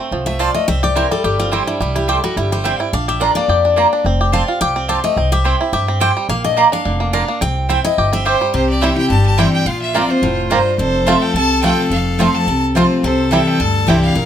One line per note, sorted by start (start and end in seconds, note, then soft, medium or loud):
0.00 0.24 A3 medium
0.00 0.68 C4 medium
0.11 0.47 C2 medium
0.11 0.52 F3 medium
0.26 0.53 A3 medium
0.26 0.39 E5 loud
0.39 0.49 C4 medium
0.39 0.49 F4 loud
0.39 0.68 F4 medium
0.39 0.50 C5 medium
0.39 0.54 D5 medium
0.39 0.50 A5 loud
0.54 0.68 A3 medium
0.54 0.67 D#5 medium
0.68 1.03 C2 medium
0.68 1.08 C4 medium
0.68 0.82 E5 loud
0.83 1.22 G4 medium
0.83 0.96 D5 loud
0.95 1.05 C4 medium
0.95 1.06 E4 loud
0.95 1.36 E4 medium
0.95 1.11 A#4 medium
0.95 1.06 C5 medium
0.95 1.06 G5 loud
1.11 1.50 G3 medium
1.11 1.24 A4 loud
1.24 1.59 G1 medium
1.24 1.64 G4 medium
1.24 1.39 G4 medium
1.39 1.78 C4 medium
1.39 1.52 F4 medium
1.52 1.79 G3 medium
1.52 1.61 C4 loud
1.52 1.62 E4 medium
1.52 1.67 E4 medium
1.52 1.62 C5 loud
1.52 1.62 G5 loud
1.67 1.80 D4 medium
1.67 1.94 E4 medium
1.80 2.16 C2 medium
1.80 2.21 G3 medium
1.80 1.96 E4 medium
1.96 2.34 E4 medium
1.96 2.08 G4 loud
2.08 2.18 C4 medium
2.08 2.18 E4 medium
2.08 2.49 G4 medium
2.08 2.23 A4 medium
2.08 2.18 C5 loud
2.08 2.18 G5 loud
2.24 2.51 G3 medium
2.24 2.36 F#4 medium
2.37 2.72 G1 medium
2.37 2.77 E4 medium
2.37 2.51 G4 medium
2.52 2.91 G3 medium
2.52 2.65 C5 loud
2.64 2.74 C4 medium
2.64 2.93 C4 medium
2.64 2.74 E4 medium
2.64 2.74 C5 loud
2.64 2.80 E5 medium
2.64 2.74 G5 loud
2.80 2.93 E4 medium
2.80 2.93 G5 loud
2.93 3.28 A#1 medium
2.93 3.21 D4 medium
2.93 3.08 F5 loud
3.08 3.47 G4 medium
3.08 3.21 E5 loud
3.20 3.30 A#3 medium
3.20 3.61 D4 medium
3.20 3.30 F4 medium
3.20 3.30 D5 loud
3.20 3.34 D5 medium
3.20 3.31 A#5 loud
3.35 3.75 A#3 medium
3.35 4.01 D5 loud
3.48 3.84 F2 medium
3.48 3.89 G4 medium
3.65 3.92 D4 medium
3.76 3.86 A#3 loud
3.76 4.05 A#3 medium
3.76 3.87 F4 medium
3.76 3.87 D5 medium
3.76 3.87 A#5 loud
3.93 4.06 D4 medium
4.05 4.40 F1 loud
4.05 4.32 C4 medium
4.21 4.59 G4 medium
4.32 4.42 C4 medium
4.32 4.73 C4 medium
4.32 4.42 F4 medium
4.32 4.43 C5 medium
4.32 4.59 F5 loud
4.32 4.43 A5 loud
4.48 4.87 F4 medium
4.61 4.96 C2 medium
4.61 4.88 G4 medium
4.61 4.87 G5 loud
4.76 5.15 C4 medium
4.88 4.98 C4 medium
4.88 4.99 F4 medium
4.88 5.17 G4 medium
4.88 4.99 C5 medium
4.88 5.03 F5 medium
4.88 4.99 A5 loud
5.04 5.18 A3 medium
5.04 5.30 D#5 loud
5.16 5.52 C2 loud
5.16 5.44 C4 medium
5.32 5.71 G4 medium
5.32 5.71 E5 loud
5.44 5.54 C4 medium
5.44 5.85 C4 medium
5.44 5.55 E4 medium
5.44 5.55 C5 loud
5.44 5.55 G5 loud
5.61 5.99 E4 medium
5.73 6.08 G2 medium
5.73 6.00 G4 medium
5.73 5.99 E5 medium
5.88 6.27 C4 medium
6.00 6.10 C4 medium
6.00 6.11 E4 loud
6.00 6.30 G4 medium
6.00 6.11 C5 loud
6.00 6.28 G5 loud
6.00 6.11 G5 loud
6.17 6.29 G3 medium
6.29 6.64 A#1 medium
6.29 6.56 A#3 medium
6.29 6.44 F5 loud
6.44 6.71 D4 medium
6.44 6.71 D#5 loud
6.56 6.67 A#3 medium
6.56 6.97 A#3 medium
6.56 6.67 F4 loud
6.56 6.67 D5 loud
6.56 6.67 A#5 loud
6.72 7.11 D4 medium
6.72 7.11 F5 loud
6.85 7.21 F1 loud
6.85 7.26 D3 medium
7.00 7.27 A#3 medium
7.13 7.23 A#3 medium
7.13 7.42 D4 medium
7.13 7.23 F4 loud
7.13 7.23 D5 medium
7.13 7.40 F5 loud
7.13 7.23 A#5 loud
7.28 7.42 A#3 medium
7.41 7.77 C2 loud
7.41 7.68 C4 medium
7.41 7.68 G5 loud
7.69 7.79 C4 medium
7.69 8.10 C4 medium
7.69 7.79 E4 medium
7.69 7.79 C5 loud
7.69 7.84 E5 medium
7.69 7.79 G5 loud
7.84 8.23 E4 medium
7.84 8.11 D#5 loud
7.98 8.33 G1 medium
7.98 8.25 G4 medium
8.13 8.51 C4 medium
8.13 8.45 E5 loud
8.25 8.35 C4 loud
8.25 8.35 E4 loud
8.25 8.54 G4 medium
8.25 8.52 C5 loud
8.25 8.36 C5 loud
8.25 8.36 G5 loud
8.41 8.54 G3 medium
8.54 8.89 C2 medium
8.54 9.07 C3 medium
8.54 9.62 G4 medium
8.54 8.68 C5 loud
8.70 8.84 D5 medium
8.81 8.96 E3 medium
8.81 8.97 G3 medium
8.81 8.89 G3 medium
8.81 8.91 C4 medium
8.81 8.89 C4 medium
8.81 8.97 C4 medium
8.81 8.91 E4 medium
8.81 8.89 E4 medium
8.81 8.95 E4 medium
8.81 8.92 C5 loud
8.81 8.97 E5 medium
8.81 8.92 G5 medium
8.96 9.11 C4 medium
8.96 9.09 E4 medium
8.96 9.09 G5 loud
9.10 9.45 G1 medium
9.10 9.64 G2 medium
9.10 9.24 A5 loud
9.26 9.40 A5 loud
9.37 9.65 E3 medium
9.37 9.65 G3 medium
9.37 9.45 G3 medium
9.37 9.47 C4 medium
9.37 9.65 C4 medium
9.37 9.45 C4 medium
9.37 9.48 E4 medium
9.37 9.66 E4 loud
9.37 9.46 E4 medium
9.37 9.48 C5 medium
9.37 9.48 G5 medium
9.37 9.53 G5 loud
9.53 9.68 G5 medium
9.66 10.01 A#1 medium
9.66 10.20 A#2 medium
9.66 10.75 F4 medium
9.66 9.81 F5 loud
9.82 9.97 E5 medium
9.94 10.09 F3 medium
9.94 10.04 A#3 medium
9.94 10.01 A#3 medium
9.94 10.09 A#3 medium
9.94 10.02 C4 medium
9.94 10.09 C4 medium
9.94 10.04 F4 medium
9.94 10.02 F4 medium
9.94 10.07 F4 loud
9.94 10.04 C5 medium
9.94 10.11 D5 medium
9.94 10.04 A#5 medium
10.09 10.23 C4 medium
10.09 10.22 F4 medium
10.09 10.38 C5 loud
10.22 10.57 F1 medium
10.22 10.49 A2 medium
10.50 10.77 G2 medium
10.50 10.60 A#3 medium
10.50 10.58 A#3 medium
10.50 10.58 C4 medium
10.50 10.60 F4 loud
10.50 10.58 F4 medium
10.50 10.60 C5 loud
10.50 10.77 C5 loud
10.50 10.60 A#5 medium
10.78 11.14 F1 loud
10.78 11.33 F2 medium
10.78 12.86 A4 loud
10.78 11.09 C5 loud
11.06 11.34 F3 medium
11.06 11.14 A3 medium
11.06 11.34 A3 medium
11.06 11.16 C4 medium
11.06 11.14 C4 medium
11.06 11.34 C4 medium
11.06 11.16 F4 medium
11.06 11.14 F4 medium
11.06 11.35 F4 medium
11.06 11.16 C5 medium
11.06 11.23 E5 medium
11.06 11.16 A5 loud
11.22 11.34 G5 loud
11.34 11.70 C2 medium
11.34 11.89 C3 medium
11.34 11.61 A5 loud
11.62 11.90 F3 medium
11.62 11.70 A3 medium
11.62 11.90 A3 loud
11.62 11.72 C4 medium
11.62 11.70 C4 medium
11.62 11.91 C4 medium
11.62 11.72 F4 medium
11.62 11.70 F4 medium
11.62 11.91 F4 medium
11.62 11.73 C5 medium
11.62 11.89 G5 loud
11.62 11.73 A5 medium
11.90 12.26 F1 medium
11.90 12.45 F2 medium
11.90 12.17 F5 medium
12.19 12.46 F3 medium
12.19 12.46 A3 medium
12.19 12.26 A3 medium
12.19 12.29 C4 medium
12.19 12.47 C4 medium
12.19 12.27 C4 medium
12.19 12.29 F4 medium
12.19 12.47 F4 medium
12.19 12.27 F4 medium
12.19 12.29 C5 medium
12.19 12.36 F5 medium
12.19 12.29 A5 loud
12.34 12.62 A5 loud
12.47 12.82 C2 medium
12.47 13.01 C3 medium
12.75 13.02 F3 medium
12.75 12.82 A3 medium
12.75 13.03 A3 medium
12.75 12.85 C4 medium
12.75 12.82 C4 medium
12.75 13.03 C4 loud
12.75 12.85 F4 medium
12.75 12.83 F4 medium
12.75 13.03 F4 loud
12.75 13.02 C5 medium
12.75 12.85 C5 medium
12.75 12.85 A5 loud
13.03 13.38 C2 medium
13.03 13.57 C3 loud
13.03 13.89 A4 loud
13.03 13.30 C5 medium
13.31 13.58 E3 medium
13.31 13.59 G3 medium
13.31 13.39 G3 medium
13.31 13.41 C4 medium
13.31 13.59 C4 medium
13.31 13.39 C4 medium
13.31 13.41 E4 loud
13.31 13.39 E4 medium
13.31 13.59 E4 medium
13.31 13.41 C5 medium
13.31 13.49 E5 medium
13.31 13.41 G5 loud
13.47 13.61 G5 loud
13.60 13.84 D2 medium
13.60 14.13 G2 medium
13.60 13.90 A5 loud
13.87 14.12 C2 medium
13.87 14.14 E3 medium
13.87 14.15 G3 medium
13.87 13.95 G3 medium
13.87 13.97 C4 medium
13.87 14.15 C4 medium
13.87 13.95 C4 medium
13.87 13.97 E4 medium
13.87 14.15 E4 loud
13.87 13.95 E4 medium
13.87 14.15 G4 loud
13.87 13.98 C5 loud
13.87 14.02 G5 loud
13.87 13.98 G5 medium
14.03 14.26 F5 loud
14.15 14.26 A#1 medium
14.15 14.26 A#2 medium
14.15 14.26 A#4 loud